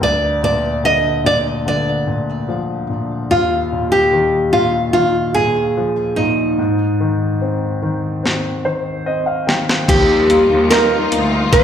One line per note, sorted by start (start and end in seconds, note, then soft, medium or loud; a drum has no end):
0.01 3.26 D2 soft
0.01 0.41 D5 medium
0.43 1.23 A#2 soft
0.43 0.85 D5 medium
0.83 1.64 D3 soft
0.83 1.26 D#5 medium
1.24 2.06 A#2 soft
1.24 1.37 D5 medium
1.66 3.26 D3 soft
1.66 2.86 D5 medium
2.07 2.88 A#2 soft
2.48 3.28 F3 soft
2.90 3.29 A#2 soft
3.31 6.56 D#2 soft
3.31 3.91 F4 medium
3.72 4.53 A#2 soft
3.92 4.50 G4 medium
4.13 4.94 D#3 soft
4.53 5.35 A#2 soft
4.53 4.92 F4 medium
4.93 6.56 D#3 soft
4.93 5.34 F4 medium
5.34 6.16 A#2 soft
5.34 6.20 G#4 medium
5.77 6.57 F3 soft
6.16 6.58 A#2 soft
6.16 9.01 D#4 medium
6.59 9.84 G#2 soft
7.00 7.81 D#3 soft
7.41 8.22 C4 soft
7.82 8.64 D#3 soft
8.23 9.05 C4 soft
8.23 snare soft
8.65 9.46 D#3 soft
8.65 9.03 C5 medium
9.06 9.86 C4 soft
9.06 9.25 D#5 medium
9.26 9.45 F5 soft
9.47 9.87 D#3 soft
9.47 9.85 G5 soft
9.47 snare medium
9.69 snare medium
9.88 10.46 D#2 medium
9.88 11.64 F3 soft
9.88 11.64 G3 medium
9.88 11.64 A#3 medium
9.88 11.64 D#4 medium
9.88 11.64 F4 medium
9.88 10.70 G4 medium
9.88 kick medium
9.88 closed hi-hat medium
9.88 crash medium
10.29 11.10 A#3 soft
10.29 closed hi-hat soft
10.50 11.07 D#2 medium
10.70 11.64 D#4 soft
10.70 11.49 A#4 medium
10.70 snare medium
10.70 closed hi-hat medium
11.11 11.50 D2 medium
11.11 11.64 A#3 soft
11.11 closed hi-hat medium
11.52 11.64 D#2 loud
11.52 11.64 D#3 medium
11.52 11.64 C5 medium
11.52 kick medium
11.52 closed hi-hat medium